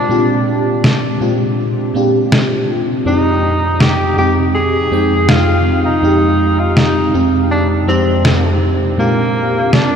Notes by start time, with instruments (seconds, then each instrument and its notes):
Already playing: fm electric piano A#2 G#3 C4 D4 F4 G4, tenor saxophone D4
0.09 fm electric piano A#2 G#3 C4 D4 F4 G4
0.84 snare
1.20 fm electric piano A#2 G#3 C4 D4 F4 G4
1.94 fm electric piano A#2 G#3 C4 D4 F4 G4
2.32 snare
3.05 fm electric piano F2 G#3 C4 D#4 G4, tenor saxophone D#4
3.80 tenor saxophone G4, snare
4.17 fm electric piano F2 G#3 C4 D#4 G4, tenor saxophone G4
4.55 tenor saxophone G#4
4.90 fm electric piano F2 G#3 C4 D#4 G5
5.29 tenor saxophone F4, snare
5.85 tenor saxophone D#4
6.02 fm electric piano F2 G#3 C4 D#4 G4
6.59 tenor saxophone F4
6.77 tenor saxophone D#4, snare
7.13 fm electric piano F2 G#3 C4 D#4 G4
7.51 tenor saxophone D4
7.86 fm electric piano F2 G#3 C4 D#4 G4, tenor saxophone C4
8.25 snare
8.97 fm electric piano A#2 G#3 C4 D4 F4 G4, tenor saxophone A#3
9.73 tenor saxophone D4, snare